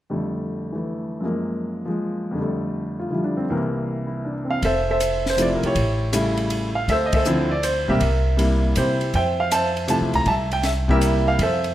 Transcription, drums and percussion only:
4.62 kick, ride
5.00 hi-hat pedal, ride
5.26 snare
5.38 hi-hat pedal, ride
5.63 ride
5.75 kick, ride
6.13 hi-hat pedal, ride
6.37 ride
6.50 ride
6.88 kick, ride
7.13 kick, ride
7.25 hi-hat pedal
7.63 hi-hat pedal, ride
8.00 kick, ride
8.39 ride
8.76 hi-hat pedal, ride
9.01 ride
9.14 kick, ride
9.51 hi-hat pedal, ride
9.77 ride
9.88 hi-hat pedal, ride
10.14 ride
10.26 kick, ride
10.51 ride
10.63 snare, ride
10.89 kick
11.01 hi-hat pedal, ride
11.39 kick, ride
11.64 ride

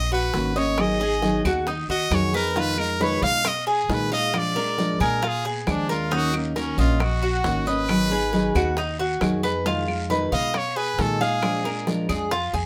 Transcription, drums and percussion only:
0.34 high bongo, low bongo, short guiro
0.56 short guiro
0.78 high bongo, long guiro, claves
1.00 high bongo
1.22 high bongo, short guiro
1.45 short guiro, claves
1.67 high bongo, long guiro
1.89 high bongo
2.12 high bongo, low bongo, short guiro, claves
2.34 high bongo, short guiro
2.56 high bongo, long guiro
2.78 claves
3.01 high bongo, short guiro
3.23 short guiro
3.45 high bongo, long guiro, claves
3.90 high bongo, low bongo, short guiro
4.12 short guiro
4.33 high bongo, long guiro, claves
4.56 high bongo
4.78 high bongo, short guiro
5.00 short guiro, claves
5.22 high bongo, long guiro
5.45 high bongo
5.67 high bongo, low bongo, short guiro, claves
5.89 high bongo, short guiro
6.12 high bongo, long guiro
6.34 claves
6.56 high bongo, short guiro
6.78 short guiro
7.00 high bongo, long guiro, claves
7.44 high bongo, low bongo, short guiro
7.66 short guiro
7.89 high bongo, long guiro, claves
8.11 high bongo
8.33 high bongo, short guiro
8.55 short guiro, claves
8.77 high bongo, long guiro
8.99 high bongo
9.21 high bongo, low bongo, short guiro, claves
9.44 high bongo, short guiro
9.66 high bongo, long guiro
9.88 claves
10.10 high bongo, short guiro
10.33 short guiro
10.54 high bongo, long guiro, claves
10.99 high bongo, low bongo, short guiro
11.21 short guiro
11.42 high bongo, long guiro, claves
11.64 high bongo
11.87 high bongo, short guiro
12.09 short guiro, claves
12.31 high bongo, long guiro
12.53 high bongo

